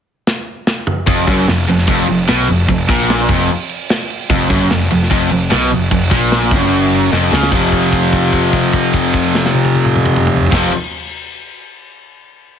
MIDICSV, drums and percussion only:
0, 0, Header, 1, 2, 480
1, 0, Start_track
1, 0, Tempo, 404313
1, 1276, Time_signature, 4, 2, 24, 8
1, 14947, End_track
2, 0, Start_track
2, 0, Title_t, "Drums"
2, 324, Note_on_c, 9, 38, 72
2, 442, Note_off_c, 9, 38, 0
2, 797, Note_on_c, 9, 38, 83
2, 916, Note_off_c, 9, 38, 0
2, 1032, Note_on_c, 9, 45, 100
2, 1151, Note_off_c, 9, 45, 0
2, 1272, Note_on_c, 9, 36, 107
2, 1276, Note_on_c, 9, 49, 80
2, 1391, Note_off_c, 9, 36, 0
2, 1394, Note_off_c, 9, 49, 0
2, 1512, Note_on_c, 9, 36, 109
2, 1514, Note_on_c, 9, 49, 63
2, 1631, Note_off_c, 9, 36, 0
2, 1633, Note_off_c, 9, 49, 0
2, 1748, Note_on_c, 9, 49, 81
2, 1761, Note_on_c, 9, 38, 113
2, 1866, Note_off_c, 9, 49, 0
2, 1879, Note_off_c, 9, 38, 0
2, 1989, Note_on_c, 9, 49, 62
2, 2108, Note_off_c, 9, 49, 0
2, 2117, Note_on_c, 9, 38, 32
2, 2218, Note_on_c, 9, 49, 82
2, 2229, Note_on_c, 9, 36, 110
2, 2235, Note_off_c, 9, 38, 0
2, 2337, Note_off_c, 9, 49, 0
2, 2347, Note_off_c, 9, 36, 0
2, 2461, Note_on_c, 9, 49, 62
2, 2580, Note_off_c, 9, 49, 0
2, 2701, Note_on_c, 9, 49, 78
2, 2714, Note_on_c, 9, 38, 106
2, 2819, Note_off_c, 9, 49, 0
2, 2832, Note_off_c, 9, 38, 0
2, 2947, Note_on_c, 9, 49, 63
2, 3066, Note_off_c, 9, 49, 0
2, 3187, Note_on_c, 9, 36, 98
2, 3187, Note_on_c, 9, 49, 82
2, 3305, Note_off_c, 9, 49, 0
2, 3306, Note_off_c, 9, 36, 0
2, 3428, Note_on_c, 9, 36, 111
2, 3431, Note_on_c, 9, 49, 62
2, 3547, Note_off_c, 9, 36, 0
2, 3550, Note_off_c, 9, 49, 0
2, 3668, Note_on_c, 9, 49, 80
2, 3681, Note_on_c, 9, 38, 109
2, 3787, Note_off_c, 9, 49, 0
2, 3800, Note_off_c, 9, 38, 0
2, 3801, Note_on_c, 9, 38, 32
2, 3906, Note_on_c, 9, 36, 108
2, 3911, Note_on_c, 9, 49, 59
2, 3920, Note_off_c, 9, 38, 0
2, 4024, Note_off_c, 9, 36, 0
2, 4029, Note_off_c, 9, 49, 0
2, 4142, Note_on_c, 9, 49, 74
2, 4261, Note_off_c, 9, 49, 0
2, 4384, Note_on_c, 9, 49, 54
2, 4502, Note_off_c, 9, 49, 0
2, 4621, Note_on_c, 9, 49, 74
2, 4634, Note_on_c, 9, 38, 108
2, 4740, Note_off_c, 9, 49, 0
2, 4753, Note_off_c, 9, 38, 0
2, 4868, Note_on_c, 9, 49, 56
2, 4986, Note_off_c, 9, 49, 0
2, 5103, Note_on_c, 9, 36, 110
2, 5103, Note_on_c, 9, 49, 79
2, 5221, Note_off_c, 9, 49, 0
2, 5222, Note_off_c, 9, 36, 0
2, 5336, Note_on_c, 9, 49, 62
2, 5343, Note_on_c, 9, 36, 108
2, 5455, Note_off_c, 9, 49, 0
2, 5462, Note_off_c, 9, 36, 0
2, 5577, Note_on_c, 9, 49, 84
2, 5590, Note_on_c, 9, 38, 106
2, 5695, Note_off_c, 9, 49, 0
2, 5708, Note_off_c, 9, 38, 0
2, 5717, Note_on_c, 9, 38, 31
2, 5828, Note_on_c, 9, 49, 62
2, 5836, Note_off_c, 9, 38, 0
2, 5947, Note_off_c, 9, 49, 0
2, 5969, Note_on_c, 9, 38, 34
2, 6066, Note_on_c, 9, 36, 110
2, 6072, Note_on_c, 9, 49, 78
2, 6088, Note_off_c, 9, 38, 0
2, 6184, Note_off_c, 9, 36, 0
2, 6190, Note_off_c, 9, 49, 0
2, 6300, Note_on_c, 9, 49, 64
2, 6419, Note_off_c, 9, 49, 0
2, 6535, Note_on_c, 9, 49, 84
2, 6548, Note_on_c, 9, 38, 105
2, 6654, Note_off_c, 9, 49, 0
2, 6667, Note_off_c, 9, 38, 0
2, 6783, Note_on_c, 9, 49, 64
2, 6902, Note_off_c, 9, 49, 0
2, 7020, Note_on_c, 9, 36, 90
2, 7024, Note_on_c, 9, 49, 89
2, 7138, Note_off_c, 9, 36, 0
2, 7143, Note_off_c, 9, 49, 0
2, 7257, Note_on_c, 9, 36, 107
2, 7260, Note_on_c, 9, 49, 66
2, 7375, Note_off_c, 9, 36, 0
2, 7379, Note_off_c, 9, 49, 0
2, 7491, Note_on_c, 9, 49, 78
2, 7504, Note_on_c, 9, 38, 112
2, 7610, Note_off_c, 9, 49, 0
2, 7623, Note_off_c, 9, 38, 0
2, 7631, Note_on_c, 9, 38, 33
2, 7732, Note_on_c, 9, 36, 107
2, 7734, Note_on_c, 9, 49, 62
2, 7749, Note_off_c, 9, 38, 0
2, 7851, Note_off_c, 9, 36, 0
2, 7853, Note_off_c, 9, 49, 0
2, 7864, Note_on_c, 9, 38, 31
2, 7966, Note_on_c, 9, 49, 81
2, 7982, Note_off_c, 9, 38, 0
2, 8085, Note_off_c, 9, 49, 0
2, 8207, Note_on_c, 9, 49, 55
2, 8326, Note_off_c, 9, 49, 0
2, 8462, Note_on_c, 9, 38, 62
2, 8581, Note_off_c, 9, 38, 0
2, 8705, Note_on_c, 9, 38, 95
2, 8819, Note_off_c, 9, 38, 0
2, 8819, Note_on_c, 9, 38, 94
2, 8923, Note_on_c, 9, 57, 92
2, 8928, Note_on_c, 9, 36, 110
2, 8938, Note_off_c, 9, 38, 0
2, 9042, Note_off_c, 9, 57, 0
2, 9047, Note_off_c, 9, 36, 0
2, 9169, Note_on_c, 9, 36, 63
2, 9169, Note_on_c, 9, 57, 44
2, 9287, Note_off_c, 9, 36, 0
2, 9287, Note_off_c, 9, 57, 0
2, 9294, Note_on_c, 9, 49, 46
2, 9410, Note_on_c, 9, 36, 62
2, 9411, Note_on_c, 9, 57, 45
2, 9413, Note_off_c, 9, 49, 0
2, 9528, Note_off_c, 9, 36, 0
2, 9530, Note_off_c, 9, 57, 0
2, 9535, Note_on_c, 9, 49, 44
2, 9651, Note_on_c, 9, 36, 68
2, 9653, Note_on_c, 9, 57, 47
2, 9654, Note_off_c, 9, 49, 0
2, 9768, Note_on_c, 9, 49, 47
2, 9769, Note_off_c, 9, 36, 0
2, 9772, Note_off_c, 9, 57, 0
2, 9881, Note_on_c, 9, 57, 44
2, 9887, Note_off_c, 9, 49, 0
2, 9887, Note_on_c, 9, 36, 63
2, 9996, Note_on_c, 9, 49, 53
2, 9999, Note_off_c, 9, 57, 0
2, 10006, Note_off_c, 9, 36, 0
2, 10114, Note_off_c, 9, 49, 0
2, 10127, Note_on_c, 9, 36, 63
2, 10128, Note_on_c, 9, 57, 49
2, 10246, Note_off_c, 9, 36, 0
2, 10246, Note_off_c, 9, 57, 0
2, 10251, Note_on_c, 9, 49, 47
2, 10369, Note_on_c, 9, 36, 59
2, 10370, Note_off_c, 9, 49, 0
2, 10374, Note_on_c, 9, 57, 46
2, 10488, Note_off_c, 9, 36, 0
2, 10491, Note_on_c, 9, 49, 51
2, 10492, Note_off_c, 9, 57, 0
2, 10610, Note_off_c, 9, 49, 0
2, 10610, Note_on_c, 9, 36, 63
2, 10617, Note_on_c, 9, 57, 54
2, 10728, Note_off_c, 9, 36, 0
2, 10735, Note_off_c, 9, 57, 0
2, 10736, Note_on_c, 9, 49, 56
2, 10850, Note_on_c, 9, 36, 67
2, 10855, Note_off_c, 9, 49, 0
2, 10856, Note_on_c, 9, 57, 55
2, 10969, Note_off_c, 9, 36, 0
2, 10973, Note_on_c, 9, 49, 54
2, 10975, Note_off_c, 9, 57, 0
2, 11091, Note_off_c, 9, 49, 0
2, 11103, Note_on_c, 9, 38, 96
2, 11222, Note_off_c, 9, 38, 0
2, 11228, Note_on_c, 9, 38, 94
2, 11331, Note_on_c, 9, 48, 85
2, 11347, Note_off_c, 9, 38, 0
2, 11450, Note_off_c, 9, 48, 0
2, 11455, Note_on_c, 9, 48, 91
2, 11573, Note_off_c, 9, 48, 0
2, 11580, Note_on_c, 9, 48, 96
2, 11694, Note_on_c, 9, 47, 100
2, 11699, Note_off_c, 9, 48, 0
2, 11813, Note_off_c, 9, 47, 0
2, 11819, Note_on_c, 9, 47, 99
2, 11938, Note_off_c, 9, 47, 0
2, 11939, Note_on_c, 9, 45, 104
2, 12057, Note_off_c, 9, 45, 0
2, 12066, Note_on_c, 9, 45, 100
2, 12185, Note_off_c, 9, 45, 0
2, 12193, Note_on_c, 9, 45, 96
2, 12307, Note_on_c, 9, 43, 97
2, 12312, Note_off_c, 9, 45, 0
2, 12423, Note_off_c, 9, 43, 0
2, 12423, Note_on_c, 9, 43, 109
2, 12491, Note_on_c, 9, 36, 116
2, 12498, Note_on_c, 9, 57, 112
2, 12511, Note_on_c, 9, 38, 104
2, 12542, Note_off_c, 9, 43, 0
2, 12609, Note_off_c, 9, 36, 0
2, 12617, Note_off_c, 9, 57, 0
2, 12630, Note_off_c, 9, 38, 0
2, 14947, End_track
0, 0, End_of_file